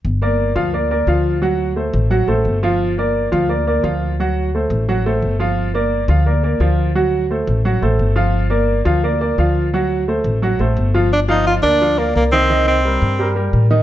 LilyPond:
<<
  \new Staff \with { instrumentName = "Upright piano" } { \time 4/4 \key g \minor \tempo 4 = 173 r8 <bes bes' d''>4 <f f' f''>8 <bes bes' d''>8 <bes bes' d''>8 <f f' f''>4 | <fis fis' fis''>4 <a a' c''>4 <fis fis' fis''>8 <a a' c''>4 <f f' f''>8~ | <f f' f''>8 <bes bes' d''>4 <f f' f''>8 <bes bes' d''>8 <bes bes' d''>8 <f f' f''>4 | <fis fis' fis''>4 <a a' c''>4 <fis fis' fis''>8 <a a' c''>4 <f f' f''>8~ |
<f f' f''>8 <bes bes' d''>4 <f f' f''>8 <bes bes' d''>8 <bes bes' d''>8 <f f' f''>4 | <fis fis' fis''>4 <a a' c''>4 <fis fis' fis''>8 <a a' c''>4 <f f' f''>8~ | <f f' f''>8 <bes bes' d''>4 <f f' f''>8 <bes bes' d''>8 <bes bes' d''>8 <f f' f''>4 | <fis fis' fis''>4 <a a' c''>4 <fis fis' fis''>8 <a a' c''>4 <f f' f''>8 |
r8 <f f' f''>4 <bes bes' d''>8 <f f' f''>8 <bes bes' d''>4 <ees ees' ees''>8 | <ees ees' ees''>4 <g g' bes'>4 <g g' bes'>8 <g g' bes'>4 <ees ees' ees''>8 | }
  \new Staff \with { instrumentName = "Tenor saxophone" } { \time 4/4 \key g \minor r1 | r1 | r1 | r1 |
r1 | r1 | r1 | r1 |
d'8 ees'8 f'8 d'4 bes8 bes8 c'8~ | c'8 c'2 r4. | }
  \new Staff \with { instrumentName = "Upright bass" } { \clef bass \time 4/4 \key g \minor g,,4. d,4. d,4~ | d,4. a,,4 a,,8 g,,4~ | g,,4. d,4. d,4~ | d,4. a,,4. g,,4~ |
g,,4. d,4. d,4~ | d,4. a,,4 a,,8 g,,4~ | g,,4. d,4. d,4~ | d,4. a,,4 a,,8 g,,4~ |
g,,4. d,4. c,4~ | c,4. g,4. a,4 | }
>>